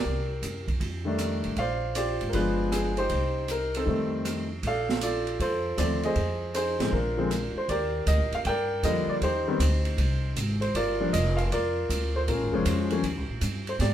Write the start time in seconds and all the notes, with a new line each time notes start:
Already playing: G4 A#4 D5
0.05 C2
0.42 F#2, hi-hat pedal, ride
0.68 kick, ride
0.80 F2, kick, ride
1.05 D#3 G3 A3 D4
1.18 cross-stick, hi-hat pedal, ride
1.44 A1, ride
1.56 A#1 C5 D5 F5, kick, ride
1.95 F4 G4 D5, hi-hat pedal, ride
2.21 G#1, ride
2.29 G1 A#4, kick, ride
2.34 F3 G#3 B3 D4 F4 B4
2.72 G#4, cross-stick, hi-hat pedal, ride
2.97 D#4 G4 C5, ride
3.09 C2, kick, ride
3.48 A#4, hi-hat pedal, ride
3.74 C4 D#4 A4, ride
3.86 F2 D#3 G3 A3 C4, kick
4.25 cross-stick, hi-hat pedal, ride
4.63 A#1 D5, kick, ride
4.67 A4 F5
4.89 snare
5.01 F4 A4 D5, hi-hat pedal, ride
5.27 ride
5.39 F2 F4 A4 C5, kick, ride
5.77 D#2 D3 F3 A3 C4 D5, cross-stick, hi-hat pedal, ride
6.03 G#4 C5 D#5, ride
6.16 F2, kick, ride
6.54 D#4 G#4 C5, hi-hat pedal, ride
6.79 A1 D3 F3 G#3 C4, snare, ride
6.92 A#1 D4 F4 A#4, kick
7.17 D3 F3 G#3 C4
7.31 cross-stick, hi-hat pedal, ride
7.55 C5, muted upright bass stroke
7.68 D#2 G4 A#4 D5, kick, ride
8.06 D2 D#5, kick, hi-hat pedal, ride
8.18 A#1
8.32 G1 F5, ride
8.45 G2 A#4 G5, kick, ride
8.49 D5
8.83 F2 D3 F3 G3 A#3 D#5, kick, hi-hat pedal, ride
9.07 D5, muted upright bass stroke
9.21 D#2 D#4 G4 C5, kick, ride
9.48 D#3 G3 B3 C4
9.59 D2, kick, hi-hat pedal, ride
9.85 ride
9.97 C2, kick, ride
10.36 G#1, kick, hi-hat pedal, ride
10.61 C5, ride
10.75 G1 F4 A#4 D5, kick, ride
11.00 F3 G3 A#3 D4
11.13 F1 D#5, kick, hi-hat pedal, ride
11.37 F5, ride
11.51 F2 F4 A#4 D5, kick, ride
11.89 D2, kick, hi-hat pedal, ride
12.16 C5
12.27 A#1 C#4 F4 A#4, kick, ride
12.40 G#1
12.53 F1 F3 G#3 C#4 C5
12.65 F2, kick, hi-hat pedal, ride
12.90 F3 G3 A#3 C#4, ride
13.03 D#2, kick, ride
13.17 C#2
13.29 A#1
13.41 G2, kick, hi-hat pedal, ride
13.67 C5, ride
13.79 G#2 G4 D5, kick, snare, ride